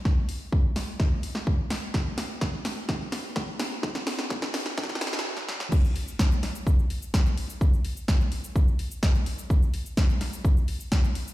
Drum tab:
CC |--------------------------------|--------------------------------|--------------------------------|x-------------------------------|
HH |----o-------o-------o-------o---|----o-------o-------o-------o---|----o-------o-------o-----------|----o-------o-------o-------o---|
SH |--------------------------------|--------------------------------|--------------------------------|x-x---x-x-x---x-x-x---x-x-x---x-|
SD |o-----------o---o-----o-----o---|o---o---o---o---o---o---o---o---|o-o-o-o-o-o-o-o-oooooooo--o-o-o-|--------o---o-----------o-------|
BD |o-------o-------o-------o-------|o-------o-------o-------o-------|o-------o-------o---------------|o-------o-------o-------o-------|

CC |--------------------------------|--------------------------------|
HH |----o-------o-------o-------o---|----o-------o-------o-------o---|
SH |x-x---x-x-x---x-x-x---x-x-x---x-|x-x---x-x-x---x-x-x---x-x-x---x-|
SD |--------o---------------o-------|--------o---o-----------o-------|
BD |o-------o-------o-------o-------|o-------o-------o-------o-------|